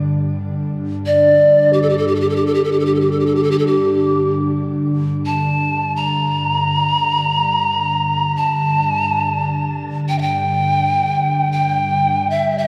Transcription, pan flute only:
1.06 1.75 D5 medium
1.73 1.84 G4 medium
1.82 1.91 A4 medium
1.89 1.99 G4 medium
1.98 2.09 A4 medium
2.07 2.17 G4 medium
2.15 2.22 A4 medium
2.21 2.31 G4 medium
2.30 2.38 A4 medium
2.36 2.48 G4 medium
2.46 2.56 A4 medium
2.55 2.66 G4 medium
2.64 2.73 A4 medium
2.72 2.81 G4 medium
2.80 2.87 A4 medium
2.86 2.96 G4 medium
2.95 3.02 A4 medium
3.01 3.13 G4 medium
3.12 3.21 A4 medium
3.20 3.28 G4 medium
3.26 3.37 A4 medium
3.35 3.45 G4 medium
3.43 3.53 A4 medium
3.51 3.60 G4 medium
3.59 3.68 A4 medium
3.67 4.32 G4 medium
5.26 5.97 A5 medium
5.96 8.36 A#5 medium
8.36 9.79 A5 medium
10.09 10.20 G5 medium
10.19 10.23 E5 medium
10.19 11.51 G5 medium
11.52 12.32 G5 medium
12.30 12.60 E5 medium
12.58 12.67 D5 medium

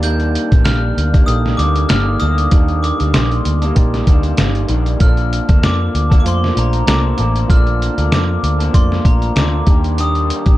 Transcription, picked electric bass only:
0.00 0.36 D#2 medium
0.52 0.63 A1 medium
0.66 0.91 A#1 medium
0.97 1.22 D2 medium
1.28 1.53 A#1 medium
1.59 1.84 D2 medium
1.91 2.15 G1 medium
2.22 2.46 D2 medium
2.52 2.90 D#2 medium
3.01 3.12 D2 medium
3.15 3.39 A#1 medium
3.46 3.70 D2 medium
3.77 4.01 A#1 medium
4.07 4.32 D2 medium
4.39 4.63 G1 medium
4.69 4.94 A#1 medium
5.01 5.39 A#1 medium
5.49 5.60 D2 medium
5.63 5.88 F2 medium
5.95 6.19 D2 medium
6.25 6.50 F2 medium
6.57 6.81 A#1 medium
6.87 7.12 C2 medium
7.19 7.43 A1 medium
7.50 7.88 A#1 loud
7.98 8.09 D2 medium
8.12 8.36 F2 medium
8.43 8.68 D2 medium
8.74 8.98 F2 medium
9.05 9.29 A#1 medium
9.36 9.61 D2 medium
9.67 10.30 D#2 medium
10.46 10.57 A1 medium

